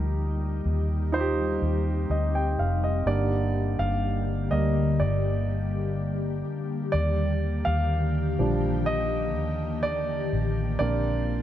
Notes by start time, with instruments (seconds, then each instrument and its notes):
Already playing: fingered electric bass D2, grand piano G3 D#4 G4 A#4, ambient pad G3 A#3 D#4 G4
0.65 fingered electric bass D#2
1.12 ambient pad C4, grand piano D#4 F4 C5
1.20 grand piano G4
1.62 fingered electric bass D#2
2.10 fingered electric bass D2, grand piano D#5
2.35 grand piano G5
2.58 fingered electric bass F1, grand piano F5
2.84 grand piano D#5
3.06 fingered electric bass G1, ambient pad D3 G3 A#3 G4, grand piano D3 G3 A#3 D5
3.79 fingered electric bass G1, grand piano F5
4.51 fingered electric bass D2, grand piano G3 A#3 D5 D#5
5.00 fingered electric bass G1, grand piano D5
6.92 fingered electric bass D#2, ambient pad D3 D#3 G4, grand piano D5
7.65 fingered electric bass D#2, grand piano F5
8.39 fingered electric bass A#1, grand piano F3 G3 D4
8.86 grand piano D#5
9.36 fingered electric bass D#2
9.83 grand piano D5
10.33 fingered electric bass A1
10.79 fingered electric bass A#1, ambient pad D3 F4 C5, grand piano A#3 C4 D4 D5